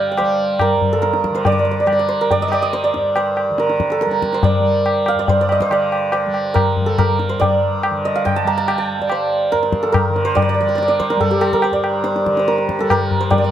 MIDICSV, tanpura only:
0, 0, Header, 1, 2, 480
1, 0, Start_track
1, 0, Tempo, 425834
1, 1631, Time_signature, 7, 2, 24, 8
1, 8343, Tempo, 421348
1, 15303, End_track
2, 0, Start_track
2, 0, Title_t, "Tanpura"
2, 0, Program_c, 0, 104
2, 0, Note_on_c, 0, 43, 65
2, 0, Note_on_c, 0, 50, 70
2, 0, Note_on_c, 0, 55, 70
2, 226, Note_off_c, 0, 55, 0
2, 226, Note_on_c, 0, 55, 74
2, 835, Note_off_c, 0, 43, 0
2, 840, Note_on_c, 0, 43, 63
2, 1461, Note_off_c, 0, 50, 0
2, 1465, Note_on_c, 0, 50, 66
2, 2103, Note_off_c, 0, 55, 0
2, 2103, Note_on_c, 0, 55, 64
2, 2710, Note_off_c, 0, 55, 0
2, 2710, Note_on_c, 0, 55, 64
2, 3328, Note_off_c, 0, 43, 0
2, 3332, Note_on_c, 0, 43, 64
2, 3938, Note_off_c, 0, 50, 0
2, 3943, Note_on_c, 0, 50, 68
2, 4574, Note_off_c, 0, 55, 0
2, 4574, Note_on_c, 0, 55, 67
2, 5184, Note_off_c, 0, 55, 0
2, 5184, Note_on_c, 0, 55, 68
2, 5803, Note_off_c, 0, 43, 0
2, 5808, Note_on_c, 0, 43, 60
2, 6415, Note_off_c, 0, 50, 0
2, 6419, Note_on_c, 0, 50, 64
2, 7060, Note_off_c, 0, 55, 0
2, 7060, Note_on_c, 0, 55, 68
2, 7678, Note_off_c, 0, 55, 0
2, 7678, Note_on_c, 0, 55, 64
2, 8287, Note_off_c, 0, 43, 0
2, 8292, Note_on_c, 0, 43, 68
2, 8910, Note_off_c, 0, 50, 0
2, 8914, Note_on_c, 0, 50, 68
2, 9529, Note_off_c, 0, 55, 0
2, 9529, Note_on_c, 0, 55, 63
2, 10155, Note_off_c, 0, 55, 0
2, 10155, Note_on_c, 0, 55, 60
2, 10760, Note_off_c, 0, 43, 0
2, 10765, Note_on_c, 0, 43, 73
2, 11399, Note_off_c, 0, 50, 0
2, 11403, Note_on_c, 0, 50, 69
2, 12009, Note_off_c, 0, 55, 0
2, 12009, Note_on_c, 0, 55, 70
2, 12631, Note_off_c, 0, 55, 0
2, 12631, Note_on_c, 0, 55, 68
2, 13253, Note_off_c, 0, 43, 0
2, 13257, Note_on_c, 0, 43, 70
2, 13868, Note_off_c, 0, 50, 0
2, 13873, Note_on_c, 0, 50, 70
2, 14498, Note_off_c, 0, 55, 0
2, 14498, Note_on_c, 0, 55, 73
2, 15104, Note_off_c, 0, 55, 0
2, 15104, Note_on_c, 0, 55, 66
2, 15303, Note_off_c, 0, 43, 0
2, 15303, Note_off_c, 0, 50, 0
2, 15303, Note_off_c, 0, 55, 0
2, 15303, End_track
0, 0, End_of_file